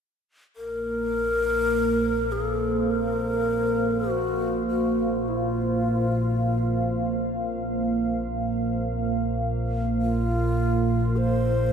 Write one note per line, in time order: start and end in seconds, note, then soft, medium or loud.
0.55 11.73 A#1 medium
0.55 11.73 A#2 medium
0.55 11.73 A#3 medium
0.55 2.33 A#4 loud
1.50 10.38 C5 medium
1.84 11.73 F5 medium
2.32 2.44 G#4 medium
2.44 2.92 A4 medium
2.90 4.11 A#4 medium
4.10 4.68 F#4 medium
4.69 5.30 F#4 medium
5.28 7.63 F4 medium
10.01 11.18 F4 medium
11.17 11.73 C5 medium